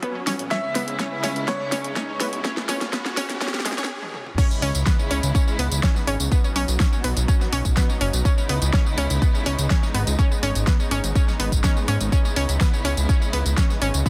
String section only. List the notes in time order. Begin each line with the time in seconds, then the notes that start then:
Already playing: F#3 B3 C#4
0.51 C#3 G#3 E4
4.38 C#3 G#3 B3 D#4 E4
6.32 F#3
8.25 C#3 G#3 E4
10.19 B3
12.12 C#3 E4
14.06 F#3